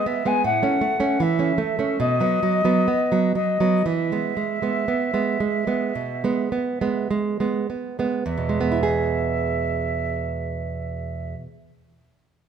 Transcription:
0.06 nylon-string guitar B3, flute E5
0.25 nylon-string guitar G#3 B3, flute G#5
0.44 nylon-string guitar A2, flute F#5
0.63 nylon-string guitar A3 C#4
0.81 nylon-string guitar A3
1.00 nylon-string guitar A3 C#4
1.20 nylon-string guitar E3, flute E5
1.39 nylon-string guitar A3 C#4
1.58 nylon-string guitar A3
1.79 nylon-string guitar A3 C#4
2.00 nylon-string guitar B2, flute D#5
2.20 nylon-string guitar F#3 B3
2.43 nylon-string guitar F#3
2.65 nylon-string guitar F#3 B3
2.88 nylon-string guitar B3
3.12 nylon-string guitar F#3 B3
3.35 nylon-string guitar F#3, flute D#5
3.60 nylon-string guitar F#3 B3
3.86 nylon-string guitar E3, flute E5
4.12 nylon-string guitar G#3 B3
4.37 nylon-string guitar G#3
4.62 nylon-string guitar G#3 B3
4.88 nylon-string guitar B3
5.14 nylon-string guitar G#3 B3
5.40 nylon-string guitar G#3
5.67 nylon-string guitar G#3 B3
5.95 nylon-string guitar B2
6.24 nylon-string guitar G#3 B3
6.52 nylon-string guitar B3
6.81 nylon-string guitar G#3 B3
7.11 nylon-string guitar G#3
7.40 nylon-string guitar G#3 B3
7.70 nylon-string guitar B3
7.99 nylon-string guitar G#3 B3
8.26 nylon-string guitar E2, flute E5
8.38 nylon-string guitar B2
8.49 nylon-string guitar G#3
8.61 nylon-string guitar B3
8.72 nylon-string guitar E4
8.83 nylon-string guitar G#4

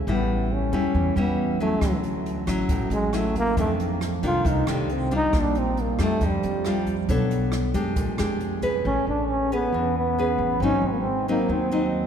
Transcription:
0.07 upright bass A1, nylon-string guitar A2 G3 C#4 E4, trombone B3
0.53 trombone C#4
0.72 upright bass E2, nylon-string guitar G3 C#4 E4
0.94 upright bass E2, nylon-string guitar E3
1.16 upright bass E2, nylon-string guitar G3 C#4 E4, trombone B3
1.60 nylon-string guitar F#3 C#4 E4, trombone A3
1.81 upright bass D2, nylon-string guitar D3, kick, cross-stick, closed hi-hat
2.03 closed hi-hat
2.26 closed hi-hat
2.47 upright bass A1, nylon-string guitar F#3 C#4 E4, kick, cross-stick, closed hi-hat
2.69 upright bass A1, nylon-string guitar A2, trombone F#3, kick, closed hi-hat
2.90 upright bass A1, trombone G#3, closed hi-hat
3.13 nylon-string guitar F#3 C#4 E4, trombone A3, cross-stick, closed hi-hat
3.35 trombone A#3, kick, closed hi-hat
3.57 upright bass F2, nylon-string guitar F2 D#3 A3 D4, trombone A3, kick, closed hi-hat
3.80 closed hi-hat
4.01 cross-stick, closed hi-hat
4.23 upright bass C2, nylon-string guitar D#3 A3 D4, trombone F4, kick, closed hi-hat
4.45 upright bass C2, nylon-string guitar C3, kick, closed hi-hat
4.49 trombone D#4
4.67 upright bass C2, nylon-string guitar D#3 A3 D4, trombone G3, cross-stick, closed hi-hat
4.89 trombone C4, closed hi-hat
5.11 nylon-string guitar G3 D4 F4, kick, closed hi-hat
5.16 trombone D#4
5.33 upright bass A#1, nylon-string guitar A#2, kick, cross-stick, closed hi-hat
5.40 trombone D4
5.55 trombone C4, closed hi-hat
5.77 closed hi-hat
5.81 trombone A#3
5.99 upright bass F2, nylon-string guitar G3 D4 F4, trombone A3, kick, cross-stick, closed hi-hat
6.21 upright bass F2, nylon-string guitar F3, kick, closed hi-hat
6.27 trombone G3
6.43 upright bass F2, closed hi-hat
6.65 nylon-string guitar G3 D4 F4, cross-stick, closed hi-hat
6.86 kick, closed hi-hat
7.09 upright bass B1, nylon-string guitar B3 D4 A4 C#5, kick, closed hi-hat
7.31 closed hi-hat
7.52 cross-stick, closed hi-hat
7.74 upright bass F#2, nylon-string guitar G#3 D4 G4, kick, closed hi-hat
7.96 upright bass A#1, nylon-string guitar A#2, kick, closed hi-hat
8.18 upright bass F2, nylon-string guitar G#3 D4 G4, cross-stick, closed hi-hat
8.40 closed hi-hat
8.62 nylon-string guitar C#4 G#4 B4, kick, closed hi-hat
8.85 upright bass A1, nylon-string guitar A3, trombone C#4
9.07 upright bass A1, trombone D4
9.28 trombone C#4
9.52 trombone B3, nylon-string guitar C#4 G#4 B4
9.73 upright bass E2, nylon-string guitar E3
9.98 trombone B3
10.18 nylon-string guitar C#4 G#4 B4
10.38 upright bass A1
10.60 upright bass G#1, nylon-string guitar G#2 F#3 C4 D#4, trombone C#4
10.82 upright bass G#1
10.86 trombone C4
10.92 trombone A#3
11.01 trombone C4
11.28 nylon-string guitar F#3 C4 D#4, trombone A#3
11.49 upright bass D#2, nylon-string guitar D#3, trombone C4
11.71 nylon-string guitar F#3 C4 D#4

